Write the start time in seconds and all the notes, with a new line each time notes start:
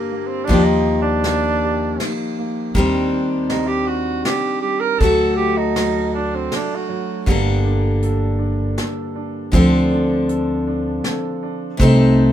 Already playing: G2 D3 G3 A#3 D4 G4
0.12 A#3
0.27 C4
0.44 D#3 D4
0.49 D#2 F3 A#3, kick, ride
0.53 G4
0.64 D#4
0.88 D#4
1.02 D4
1.24 A#3, snare, ride
1.63 G4
2.00 D#4, snare, ride
2.38 A#3
2.74 D#2 D#3 G3 C4, kick, ride
2.79 D4
3.13 D4
3.48 G3 D#4, snare, ride
3.67 G4
3.86 F#4
4.25 D4 G4, snare, ride
4.61 G3 G4
4.80 A#4
4.99 D2 F#3 A3 A4, kick, ride
5.04 F#4 A4
5.36 A3 G4
5.57 D#4
5.76 F#3, snare, ride
6.14 D4
6.35 C4
6.52 A3 D4, snare, ride
6.75 F#4
6.89 F#3
7.26 G1 G2 D3 G3 A#3, kick, closed hi-hat
7.30 D4 A4
7.65 D4
8.02 A4, closed hi-hat
8.39 D4
8.78 A4, snare, closed hi-hat
9.16 D4
9.52 D2 D3 F3 C4 D4, kick, closed hi-hat
9.56 A4
9.91 D4
10.29 A4, closed hi-hat
10.67 D4
11.04 A4, snare, closed hi-hat
11.43 D4
11.77 C2 C3 A3 C4, kick, closed hi-hat
11.82 D#4 A4
12.19 D#4